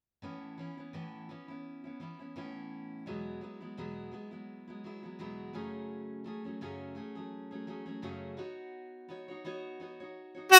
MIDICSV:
0, 0, Header, 1, 3, 480
1, 0, Start_track
1, 0, Tempo, 710059
1, 149, Time_signature, 4, 2, 24, 8
1, 7161, End_track
2, 0, Start_track
2, 0, Title_t, "Harmonica"
2, 0, Program_c, 0, 22
2, 7111, Note_on_c, 0, 66, 96
2, 7161, Note_off_c, 0, 66, 0
2, 7161, End_track
3, 0, Start_track
3, 0, Title_t, "Steel-string acoustic guitar"
3, 0, Program_c, 1, 25
3, 149, Note_on_c, 1, 45, 67
3, 150, Note_on_c, 1, 52, 65
3, 157, Note_on_c, 1, 59, 70
3, 157, Note_on_c, 1, 61, 70
3, 163, Note_on_c, 1, 64, 72
3, 381, Note_off_c, 1, 52, 0
3, 389, Note_off_c, 1, 45, 0
3, 390, Note_on_c, 1, 52, 55
3, 391, Note_off_c, 1, 59, 0
3, 393, Note_off_c, 1, 61, 0
3, 396, Note_off_c, 1, 64, 0
3, 400, Note_on_c, 1, 59, 56
3, 400, Note_on_c, 1, 61, 61
3, 408, Note_on_c, 1, 64, 59
3, 515, Note_off_c, 1, 64, 0
3, 521, Note_off_c, 1, 52, 0
3, 522, Note_off_c, 1, 61, 0
3, 523, Note_on_c, 1, 64, 51
3, 526, Note_off_c, 1, 59, 0
3, 530, Note_on_c, 1, 61, 38
3, 540, Note_on_c, 1, 59, 40
3, 628, Note_off_c, 1, 59, 0
3, 630, Note_off_c, 1, 64, 0
3, 630, Note_on_c, 1, 45, 67
3, 631, Note_off_c, 1, 61, 0
3, 635, Note_on_c, 1, 52, 72
3, 636, Note_on_c, 1, 59, 70
3, 640, Note_on_c, 1, 61, 68
3, 644, Note_on_c, 1, 64, 69
3, 864, Note_off_c, 1, 52, 0
3, 869, Note_off_c, 1, 45, 0
3, 872, Note_on_c, 1, 52, 54
3, 873, Note_off_c, 1, 59, 0
3, 874, Note_off_c, 1, 61, 0
3, 876, Note_off_c, 1, 64, 0
3, 881, Note_on_c, 1, 59, 49
3, 884, Note_on_c, 1, 61, 52
3, 889, Note_on_c, 1, 64, 53
3, 993, Note_off_c, 1, 64, 0
3, 1001, Note_on_c, 1, 64, 51
3, 1002, Note_off_c, 1, 52, 0
3, 1007, Note_off_c, 1, 59, 0
3, 1008, Note_off_c, 1, 61, 0
3, 1015, Note_on_c, 1, 61, 41
3, 1020, Note_on_c, 1, 59, 40
3, 1235, Note_off_c, 1, 64, 0
3, 1243, Note_on_c, 1, 64, 50
3, 1244, Note_off_c, 1, 61, 0
3, 1251, Note_off_c, 1, 59, 0
3, 1252, Note_on_c, 1, 61, 45
3, 1264, Note_on_c, 1, 59, 37
3, 1349, Note_off_c, 1, 59, 0
3, 1350, Note_off_c, 1, 64, 0
3, 1351, Note_on_c, 1, 52, 49
3, 1355, Note_off_c, 1, 61, 0
3, 1357, Note_on_c, 1, 59, 56
3, 1364, Note_on_c, 1, 61, 58
3, 1369, Note_on_c, 1, 64, 59
3, 1473, Note_off_c, 1, 64, 0
3, 1481, Note_off_c, 1, 61, 0
3, 1481, Note_on_c, 1, 64, 46
3, 1482, Note_off_c, 1, 52, 0
3, 1485, Note_off_c, 1, 59, 0
3, 1489, Note_on_c, 1, 61, 41
3, 1498, Note_on_c, 1, 59, 37
3, 1589, Note_off_c, 1, 64, 0
3, 1591, Note_off_c, 1, 59, 0
3, 1593, Note_off_c, 1, 61, 0
3, 1593, Note_on_c, 1, 52, 68
3, 1594, Note_on_c, 1, 45, 64
3, 1599, Note_on_c, 1, 59, 77
3, 1604, Note_on_c, 1, 61, 71
3, 1607, Note_on_c, 1, 64, 79
3, 2069, Note_on_c, 1, 40, 69
3, 2071, Note_off_c, 1, 45, 0
3, 2073, Note_off_c, 1, 52, 0
3, 2074, Note_off_c, 1, 59, 0
3, 2074, Note_on_c, 1, 47, 76
3, 2075, Note_on_c, 1, 54, 73
3, 2076, Note_off_c, 1, 61, 0
3, 2077, Note_on_c, 1, 56, 74
3, 2079, Note_off_c, 1, 64, 0
3, 2082, Note_on_c, 1, 59, 72
3, 2082, Note_on_c, 1, 64, 70
3, 2298, Note_off_c, 1, 54, 0
3, 2306, Note_off_c, 1, 56, 0
3, 2306, Note_on_c, 1, 54, 51
3, 2309, Note_off_c, 1, 40, 0
3, 2311, Note_off_c, 1, 47, 0
3, 2311, Note_off_c, 1, 59, 0
3, 2314, Note_on_c, 1, 56, 52
3, 2315, Note_off_c, 1, 64, 0
3, 2319, Note_on_c, 1, 59, 60
3, 2325, Note_on_c, 1, 64, 62
3, 2429, Note_off_c, 1, 64, 0
3, 2437, Note_off_c, 1, 59, 0
3, 2437, Note_on_c, 1, 64, 49
3, 2439, Note_off_c, 1, 54, 0
3, 2440, Note_off_c, 1, 56, 0
3, 2445, Note_on_c, 1, 59, 46
3, 2448, Note_on_c, 1, 56, 45
3, 2457, Note_on_c, 1, 54, 36
3, 2547, Note_off_c, 1, 64, 0
3, 2548, Note_off_c, 1, 54, 0
3, 2549, Note_off_c, 1, 56, 0
3, 2551, Note_off_c, 1, 59, 0
3, 2552, Note_on_c, 1, 40, 64
3, 2555, Note_on_c, 1, 47, 71
3, 2556, Note_on_c, 1, 54, 73
3, 2557, Note_on_c, 1, 56, 78
3, 2560, Note_on_c, 1, 59, 78
3, 2562, Note_on_c, 1, 64, 69
3, 2774, Note_off_c, 1, 54, 0
3, 2781, Note_off_c, 1, 56, 0
3, 2782, Note_on_c, 1, 54, 48
3, 2788, Note_off_c, 1, 59, 0
3, 2789, Note_on_c, 1, 56, 52
3, 2790, Note_off_c, 1, 40, 0
3, 2791, Note_off_c, 1, 64, 0
3, 2792, Note_off_c, 1, 47, 0
3, 2796, Note_on_c, 1, 59, 59
3, 2799, Note_on_c, 1, 64, 61
3, 2905, Note_off_c, 1, 64, 0
3, 2913, Note_off_c, 1, 59, 0
3, 2913, Note_on_c, 1, 64, 51
3, 2917, Note_off_c, 1, 54, 0
3, 2918, Note_off_c, 1, 56, 0
3, 2921, Note_on_c, 1, 59, 48
3, 2926, Note_on_c, 1, 56, 41
3, 2933, Note_on_c, 1, 54, 38
3, 3153, Note_off_c, 1, 64, 0
3, 3161, Note_off_c, 1, 59, 0
3, 3161, Note_on_c, 1, 64, 48
3, 3163, Note_off_c, 1, 56, 0
3, 3167, Note_off_c, 1, 54, 0
3, 3168, Note_on_c, 1, 59, 50
3, 3177, Note_on_c, 1, 56, 44
3, 3179, Note_on_c, 1, 54, 39
3, 3264, Note_off_c, 1, 54, 0
3, 3269, Note_off_c, 1, 64, 0
3, 3271, Note_off_c, 1, 56, 0
3, 3272, Note_off_c, 1, 59, 0
3, 3272, Note_on_c, 1, 54, 53
3, 3279, Note_on_c, 1, 56, 55
3, 3286, Note_on_c, 1, 59, 56
3, 3288, Note_on_c, 1, 64, 59
3, 3390, Note_off_c, 1, 64, 0
3, 3394, Note_off_c, 1, 59, 0
3, 3398, Note_on_c, 1, 64, 44
3, 3402, Note_off_c, 1, 54, 0
3, 3402, Note_on_c, 1, 59, 45
3, 3405, Note_off_c, 1, 56, 0
3, 3414, Note_on_c, 1, 56, 43
3, 3418, Note_on_c, 1, 54, 41
3, 3504, Note_off_c, 1, 54, 0
3, 3507, Note_off_c, 1, 56, 0
3, 3507, Note_off_c, 1, 64, 0
3, 3507, Note_on_c, 1, 40, 74
3, 3509, Note_off_c, 1, 59, 0
3, 3512, Note_on_c, 1, 47, 68
3, 3512, Note_on_c, 1, 54, 77
3, 3515, Note_on_c, 1, 56, 78
3, 3521, Note_on_c, 1, 64, 77
3, 3522, Note_on_c, 1, 59, 72
3, 3738, Note_off_c, 1, 40, 0
3, 3740, Note_off_c, 1, 54, 0
3, 3741, Note_off_c, 1, 47, 0
3, 3741, Note_on_c, 1, 42, 65
3, 3744, Note_on_c, 1, 49, 62
3, 3747, Note_off_c, 1, 56, 0
3, 3749, Note_on_c, 1, 54, 65
3, 3749, Note_on_c, 1, 57, 65
3, 3750, Note_off_c, 1, 59, 0
3, 3750, Note_off_c, 1, 64, 0
3, 3752, Note_on_c, 1, 68, 67
3, 3753, Note_on_c, 1, 61, 67
3, 4217, Note_off_c, 1, 54, 0
3, 4220, Note_off_c, 1, 57, 0
3, 4220, Note_on_c, 1, 54, 54
3, 4224, Note_off_c, 1, 42, 0
3, 4226, Note_off_c, 1, 49, 0
3, 4228, Note_on_c, 1, 57, 60
3, 4229, Note_off_c, 1, 61, 0
3, 4230, Note_off_c, 1, 68, 0
3, 4232, Note_on_c, 1, 61, 59
3, 4239, Note_on_c, 1, 68, 65
3, 4347, Note_off_c, 1, 68, 0
3, 4352, Note_off_c, 1, 61, 0
3, 4355, Note_on_c, 1, 68, 45
3, 4356, Note_off_c, 1, 54, 0
3, 4360, Note_off_c, 1, 57, 0
3, 4360, Note_on_c, 1, 61, 42
3, 4369, Note_on_c, 1, 57, 43
3, 4375, Note_on_c, 1, 54, 38
3, 4465, Note_off_c, 1, 54, 0
3, 4466, Note_off_c, 1, 68, 0
3, 4467, Note_off_c, 1, 57, 0
3, 4468, Note_off_c, 1, 61, 0
3, 4468, Note_on_c, 1, 42, 71
3, 4472, Note_on_c, 1, 49, 75
3, 4473, Note_on_c, 1, 54, 75
3, 4475, Note_on_c, 1, 57, 77
3, 4480, Note_on_c, 1, 61, 76
3, 4483, Note_on_c, 1, 68, 77
3, 4690, Note_off_c, 1, 54, 0
3, 4697, Note_off_c, 1, 57, 0
3, 4698, Note_on_c, 1, 54, 55
3, 4702, Note_off_c, 1, 61, 0
3, 4705, Note_on_c, 1, 57, 56
3, 4708, Note_off_c, 1, 42, 0
3, 4709, Note_off_c, 1, 68, 0
3, 4710, Note_off_c, 1, 49, 0
3, 4710, Note_on_c, 1, 61, 53
3, 4717, Note_on_c, 1, 68, 58
3, 4827, Note_off_c, 1, 68, 0
3, 4831, Note_off_c, 1, 61, 0
3, 4835, Note_off_c, 1, 54, 0
3, 4835, Note_on_c, 1, 68, 48
3, 4838, Note_off_c, 1, 57, 0
3, 4839, Note_on_c, 1, 61, 47
3, 4847, Note_on_c, 1, 57, 42
3, 4855, Note_on_c, 1, 54, 40
3, 5068, Note_off_c, 1, 68, 0
3, 5076, Note_on_c, 1, 68, 49
3, 5077, Note_off_c, 1, 61, 0
3, 5078, Note_off_c, 1, 57, 0
3, 5085, Note_on_c, 1, 61, 47
3, 5086, Note_on_c, 1, 57, 43
3, 5087, Note_off_c, 1, 54, 0
3, 5096, Note_on_c, 1, 54, 38
3, 5178, Note_off_c, 1, 54, 0
3, 5183, Note_off_c, 1, 57, 0
3, 5186, Note_off_c, 1, 68, 0
3, 5186, Note_on_c, 1, 54, 59
3, 5187, Note_off_c, 1, 61, 0
3, 5191, Note_on_c, 1, 57, 63
3, 5195, Note_on_c, 1, 61, 54
3, 5201, Note_on_c, 1, 68, 66
3, 5303, Note_off_c, 1, 68, 0
3, 5311, Note_off_c, 1, 61, 0
3, 5311, Note_on_c, 1, 68, 54
3, 5318, Note_off_c, 1, 54, 0
3, 5319, Note_off_c, 1, 57, 0
3, 5319, Note_on_c, 1, 61, 48
3, 5327, Note_on_c, 1, 57, 41
3, 5330, Note_on_c, 1, 54, 41
3, 5419, Note_off_c, 1, 54, 0
3, 5422, Note_off_c, 1, 57, 0
3, 5423, Note_off_c, 1, 68, 0
3, 5424, Note_on_c, 1, 42, 75
3, 5426, Note_on_c, 1, 49, 76
3, 5427, Note_off_c, 1, 61, 0
3, 5427, Note_on_c, 1, 54, 76
3, 5430, Note_on_c, 1, 57, 81
3, 5434, Note_on_c, 1, 61, 78
3, 5437, Note_on_c, 1, 68, 78
3, 5654, Note_off_c, 1, 54, 0
3, 5657, Note_on_c, 1, 59, 59
3, 5659, Note_off_c, 1, 57, 0
3, 5662, Note_on_c, 1, 63, 65
3, 5665, Note_off_c, 1, 42, 0
3, 5665, Note_off_c, 1, 61, 0
3, 5667, Note_off_c, 1, 49, 0
3, 5668, Note_on_c, 1, 66, 69
3, 5670, Note_off_c, 1, 68, 0
3, 5672, Note_on_c, 1, 73, 69
3, 6139, Note_off_c, 1, 59, 0
3, 6141, Note_off_c, 1, 63, 0
3, 6141, Note_on_c, 1, 59, 55
3, 6147, Note_off_c, 1, 66, 0
3, 6149, Note_off_c, 1, 73, 0
3, 6149, Note_on_c, 1, 63, 56
3, 6154, Note_on_c, 1, 66, 58
3, 6158, Note_on_c, 1, 73, 60
3, 6266, Note_off_c, 1, 73, 0
3, 6274, Note_on_c, 1, 73, 49
3, 6276, Note_off_c, 1, 59, 0
3, 6277, Note_off_c, 1, 66, 0
3, 6280, Note_off_c, 1, 63, 0
3, 6285, Note_on_c, 1, 66, 45
3, 6294, Note_on_c, 1, 63, 42
3, 6382, Note_off_c, 1, 63, 0
3, 6384, Note_off_c, 1, 73, 0
3, 6386, Note_on_c, 1, 59, 71
3, 6387, Note_off_c, 1, 66, 0
3, 6390, Note_on_c, 1, 63, 75
3, 6395, Note_on_c, 1, 66, 75
3, 6398, Note_on_c, 1, 73, 84
3, 6616, Note_off_c, 1, 59, 0
3, 6624, Note_off_c, 1, 63, 0
3, 6624, Note_on_c, 1, 59, 54
3, 6630, Note_off_c, 1, 66, 0
3, 6632, Note_off_c, 1, 73, 0
3, 6632, Note_on_c, 1, 63, 58
3, 6639, Note_on_c, 1, 66, 54
3, 6643, Note_on_c, 1, 73, 60
3, 6751, Note_off_c, 1, 73, 0
3, 6757, Note_off_c, 1, 59, 0
3, 6758, Note_off_c, 1, 66, 0
3, 6760, Note_off_c, 1, 63, 0
3, 6760, Note_on_c, 1, 73, 50
3, 6766, Note_on_c, 1, 66, 44
3, 6778, Note_on_c, 1, 63, 41
3, 6985, Note_off_c, 1, 73, 0
3, 6993, Note_on_c, 1, 73, 49
3, 6996, Note_off_c, 1, 66, 0
3, 7003, Note_off_c, 1, 63, 0
3, 7004, Note_on_c, 1, 66, 43
3, 7012, Note_on_c, 1, 63, 44
3, 7097, Note_off_c, 1, 63, 0
3, 7099, Note_on_c, 1, 59, 56
3, 7103, Note_off_c, 1, 73, 0
3, 7104, Note_off_c, 1, 66, 0
3, 7105, Note_on_c, 1, 63, 60
3, 7161, Note_off_c, 1, 59, 0
3, 7161, Note_off_c, 1, 63, 0
3, 7161, End_track
0, 0, End_of_file